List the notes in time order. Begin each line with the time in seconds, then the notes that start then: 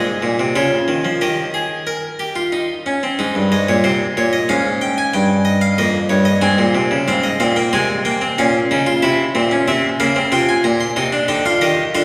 Already playing: G#4 D#5
0.22 A#2
0.39 C3
0.55 C#3 F4 C#5
0.88 D#3
1.05 F3
1.21 D#3 G4 D#5
1.54 G#4
1.87 A#4
2.19 G4
2.36 F4
2.52 D#4
2.86 C#4
3.03 C4
3.19 G#2 D#4
3.35 G2
3.52 G#2 D#5
3.69 A#2 C#5
3.84 C3 C5
4.17 A#2 C#5
4.33 D#5
4.49 G#2 C#4 F5
4.81 G5
4.98 G#5
5.14 G2 G5
5.45 D#5
5.61 F5
5.78 F2 A#3 D#5
6.09 G2 C#5
6.25 D#5
6.41 G#2 C4 G#5
6.58 A#2
6.75 C3
6.91 C#3
7.08 G#2 C4 F5
7.23 D#5
7.40 A#2 C4 F5
7.56 A#3 G5
7.73 C3 G#3 G#5
8.05 A#3 G5
8.21 C4
8.38 A#2 C#4 F5
8.71 C#3 D#4
8.86 F4
9.02 C3 E4 E5
9.35 A#2 C4
9.51 C#4
9.68 C3 C4 E5
10.00 C#3 A#3 F5
10.16 C4
10.32 C3 F4 G5
10.49 G#5
10.64 A#2 A#5
10.80 C6
10.96 C3 D#4 C6
11.12 D4
11.28 D3 D#4 G5
11.46 F4 F5
11.61 D#3 G4 D#5
11.95 D3 F4 F5